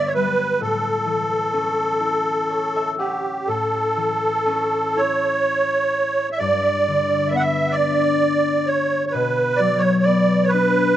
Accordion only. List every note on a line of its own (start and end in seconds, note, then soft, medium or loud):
0.06 0.14 C#5 medium
0.14 0.61 B4 medium
0.61 2.95 A4 medium
2.98 3.49 G4 soft
3.47 5.00 A4 medium
4.97 6.29 C#5 medium
6.32 6.39 E5 medium
6.38 7.33 D5 medium
7.28 7.36 E5 medium
7.36 7.75 E5 medium
7.36 7.43 F#5 medium
7.72 8.68 D5 medium
8.67 9.05 C#5 medium
9.06 9.13 C#5 medium
9.11 9.60 B4 medium
9.56 9.82 D5 medium
9.78 10.04 C#5 medium
10.03 10.45 D5 medium
10.44 10.51 C#5 medium
10.48 10.97 B4 medium